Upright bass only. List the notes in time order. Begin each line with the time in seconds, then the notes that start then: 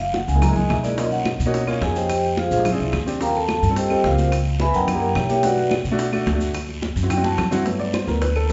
Already playing: F#1
0.28 C#2
0.56 C#2
0.70 B1
1.40 B2
1.81 F2
2.51 A#1
2.79 C2
2.93 D#2
3.62 G2
4.04 C#2
4.74 F#2
5.15 B1
5.84 B2
6.26 D2
6.96 F#2
7.38 G2
8.07 D2
8.49 B1